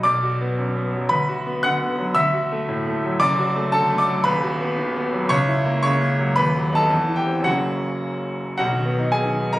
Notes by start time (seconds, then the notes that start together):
0.03 B1 D5 D6
0.23 F#4
0.41 B3
0.58 F#2
0.76 B3
0.95 F#3
1.09 D2 B4 B5
1.29 F#4
1.46 B3
1.63 D3 F#5 F#6
1.81 B3
1.98 F#3
2.15 D2 E5 E6
2.34 F#4
2.52 A3
2.69 A2
2.87 A3
3.04 F#3
3.20 F#1 F#2 D5 D6
3.39 F#4
3.56 A3
3.72 D3 A4 A5
3.90 A3
3.98 D5 D6
4.08 F#3
4.24 D#1 D#2 B4 B5
4.43 F#4
4.61 B3
4.78 D#3
4.96 B3
5.13 F#3
5.29 C#2 C#5 C#6
5.48 E4
5.65 A#3
5.83 C#3 C#5 C#6
6.01 A#3
6.19 F#3
6.36 D#1 D#2 B4 B5
6.55 F#3
6.72 B3 D#4 A5
6.76 A4
6.90 E2
7.08 E3
7.16 G4 G5
7.26 C4
7.40 F#2 C#3 A#3 F#5
7.44 F#1 C#4 F#4
8.58 B1 F#4 F#5
8.72 D#3
8.86 B3
8.99 D#4
9.12 B3 G#4 G#5
9.25 D#3
9.40 B3
9.53 D#4 A#4 A#5